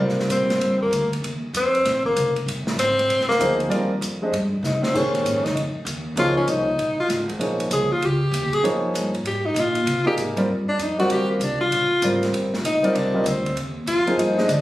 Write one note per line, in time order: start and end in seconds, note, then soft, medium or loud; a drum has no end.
0.00 0.29 C3 medium
0.00 0.85 G3 medium
0.00 0.85 C4 medium
0.00 0.85 F4 medium
0.00 0.86 A#4 medium
0.00 0.86 D5 medium
0.09 snare soft
0.19 snare soft
0.29 0.60 A#2 medium
0.29 0.78 C4 medium
0.29 hi-hat pedal medium
0.29 ride medium
0.50 snare soft
0.50 ride soft
0.60 0.90 G2 medium
0.60 ride medium
0.81 1.11 A#3 medium
0.81 kick soft
0.91 1.21 D2 medium
0.91 hi-hat pedal soft
0.91 ride medium
1.13 ride soft
1.22 1.41 D#2 medium
1.22 ride medium
1.42 muted upright bass stroke soft
1.53 1.84 F2 medium
1.53 2.03 C4 medium
1.53 hi-hat pedal medium
1.53 ride medium
1.75 ride soft
1.85 2.15 A#1 medium
1.85 snare soft
1.85 ride medium
2.05 2.34 A#3 medium
2.05 kick medium
2.16 2.46 F1 loud
2.16 hi-hat pedal medium
2.16 ride medium
2.36 ride soft
2.46 2.76 G1 medium
2.46 ride medium
2.67 snare medium
2.77 3.07 G#1 medium
2.77 3.26 C4 medium
2.77 hi-hat pedal medium
2.77 ride medium
2.99 ride soft
3.08 3.27 A#1 medium
3.08 ride medium
3.20 snare soft
3.29 3.57 A#3 medium
3.29 muted upright bass stroke soft
3.29 snare soft
3.39 3.69 D2 medium
3.39 3.86 F3 medium
3.39 3.86 A#3 medium
3.39 3.86 D#4 medium
3.39 3.87 G#4 medium
3.39 3.87 C5 medium
3.39 hi-hat pedal medium
3.39 ride medium
3.60 ride soft
3.69 4.00 D#2 medium
3.69 3.87 G3 medium
3.69 3.88 C4 medium
3.69 3.88 F4 medium
3.69 3.88 A#4 medium
3.69 3.88 D5 medium
3.69 ride medium
4.01 4.31 F2 medium
4.01 hi-hat pedal medium
4.01 ride medium
4.22 4.32 G#3 medium
4.22 4.32 D4 medium
4.22 4.32 G4 medium
4.22 4.32 C5 medium
4.22 4.32 D#5 medium
4.32 4.62 G2 medium
4.32 ride medium
4.63 4.81 C3 medium
4.63 4.84 D#4 medium
4.63 snare soft
4.63 hi-hat pedal medium
4.83 4.98 C4 medium
4.83 muted upright bass stroke soft
4.83 snare medium
4.94 5.23 A#2 medium
4.94 5.41 D#3 medium
4.94 5.41 G#3 medium
4.94 5.41 C#4 medium
4.94 5.47 C#4 medium
4.94 5.41 G4 medium
4.94 5.41 C5 medium
4.94 kick medium
4.94 crash medium
5.15 ride medium
5.24 5.34 G#2 medium
5.24 hi-hat pedal medium
5.24 ride medium
5.34 5.44 F2 soft
5.44 5.55 C#2 medium
5.44 5.56 D#4 medium
5.44 snare soft
5.44 ride soft
5.55 5.84 F2 medium
5.55 ride medium
5.85 6.15 D#2 medium
5.85 hi-hat pedal medium
5.85 ride medium
6.16 6.46 C#2 medium
6.16 6.64 F3 medium
6.16 6.64 A#3 medium
6.16 6.64 D#4 medium
6.16 6.37 F4 loud
6.16 6.64 G#4 medium
6.16 6.64 C#5 medium
6.16 ride medium
6.37 6.52 C#4 medium
6.47 6.77 C2 medium
6.47 7.00 D#4 medium
6.47 hi-hat pedal medium
6.47 ride medium
6.78 6.97 A#1 medium
6.78 ride medium
6.98 7.10 F4 medium
6.98 muted upright bass stroke soft
7.08 7.39 G#1 loud
7.08 snare soft
7.08 hi-hat pedal medium
7.08 ride medium
7.29 kick soft
7.29 ride soft
7.39 7.70 A#1 medium
7.39 7.86 F3 medium
7.39 7.87 A#3 medium
7.39 7.87 D#4 medium
7.39 7.87 G#4 soft
7.39 7.87 C#5 medium
7.39 ride medium
7.60 ride medium
7.71 7.89 C2 medium
7.71 7.94 G#4 medium
7.71 hi-hat pedal medium
7.71 ride medium
7.90 8.07 F4 medium
7.90 muted upright bass stroke soft
8.01 8.31 C#2 medium
8.01 ride medium
8.05 8.55 G4 medium
8.31 8.42 D#2 loud
8.31 hi-hat pedal medium
8.31 ride medium
8.42 8.51 C#2 medium
8.52 8.62 A#1 medium
8.52 8.65 G#4 loud
8.52 ride soft
8.63 8.93 F2 medium
8.63 9.10 F3 medium
8.63 9.10 A#3 medium
8.63 9.10 D#4 medium
8.63 9.11 G#4 medium
8.63 9.10 C#5 medium
8.63 ride medium
8.94 9.23 G2 medium
8.94 hi-hat pedal medium
8.94 ride medium
9.14 ride soft
9.23 9.54 G#2 medium
9.23 9.47 G4 medium
9.23 ride medium
9.46 9.61 D#4 medium
9.54 9.85 A#2 loud
9.54 hi-hat pedal medium
9.54 ride medium
9.59 10.07 F4 medium
9.75 ride soft
9.86 10.04 C3 medium
9.86 ride medium
10.06 10.35 A#3 medium
10.06 10.35 D#4 medium
10.06 10.14 G4 loud
10.06 10.35 G#4 medium
10.06 10.35 D5 medium
10.06 10.36 F5 medium
10.06 muted upright bass stroke soft
10.17 10.47 G#2 medium
10.17 hi-hat pedal medium
10.17 ride medium
10.37 10.47 G3 medium
10.37 10.47 C4 medium
10.37 10.48 F4 medium
10.37 10.48 A#4 medium
10.37 10.48 D5 medium
10.37 ride medium
10.49 10.78 G2 medium
10.69 10.85 D4 medium
10.79 11.09 F2 medium
10.79 hi-hat pedal medium
10.79 ride medium
10.83 10.99 D#4 medium
10.98 11.38 G3 medium
10.98 11.39 C4 medium
10.98 11.39 F4 medium
10.98 11.13 F#4 medium
10.98 11.39 A#4 medium
10.98 11.39 D5 medium
10.98 ride soft
11.10 11.39 D#2 medium
11.10 11.30 G4 loud
11.10 ride medium
11.32 11.45 A#3 medium
11.40 11.70 C2 medium
11.40 11.60 D4 medium
11.40 hi-hat pedal medium
11.40 ride medium
11.61 12.29 F4 loud
11.71 11.89 A#1 medium
11.71 ride medium
11.91 muted upright bass stroke soft
12.02 12.32 G#1 loud
12.02 12.49 G3 medium
12.02 12.49 C4 medium
12.02 12.49 F4 medium
12.02 12.50 A#4 medium
12.02 12.49 D5 medium
12.02 hi-hat pedal medium
12.02 ride medium
12.23 snare soft
12.23 ride soft
12.33 12.63 G1 medium
12.33 ride medium
12.54 snare medium
12.63 12.82 A#1 medium
12.63 12.97 D#4 medium
12.63 hi-hat pedal medium
12.63 ride medium
12.83 13.12 G3 medium
12.83 13.12 C4 medium
12.83 13.12 F4 medium
12.83 13.13 A#4 medium
12.83 13.13 D5 medium
12.83 muted upright bass stroke soft
12.83 ride soft
12.93 13.23 C2 medium
12.93 13.29 D4 medium
12.93 ride medium
13.14 13.24 G3 medium
13.14 13.25 C4 medium
13.14 13.24 F4 medium
13.14 13.24 A#4 medium
13.14 13.25 D#5 medium
13.24 13.54 D2 loud
13.24 13.57 C4 medium
13.24 hi-hat pedal medium
13.24 ride medium
13.45 kick soft
13.45 ride soft
13.55 13.86 D#2 medium
13.55 ride medium
13.86 14.16 F2 medium
13.86 14.20 F4 medium
13.86 hi-hat pedal medium
13.86 ride medium
14.07 14.35 F3 medium
14.07 14.36 A#3 medium
14.07 14.36 D#4 medium
14.07 14.36 G#4 medium
14.07 14.36 C5 medium
14.07 ride soft
14.16 14.46 G2 medium
14.16 14.51 D#4 medium
14.16 ride medium
14.37 14.47 G#3 medium
14.37 14.48 D4 medium
14.37 14.48 G4 medium
14.37 14.48 C5 medium
14.37 14.48 D#5 medium
14.37 snare soft
14.47 14.61 D3 medium
14.47 14.61 D4 medium
14.47 hi-hat pedal medium
14.47 ride medium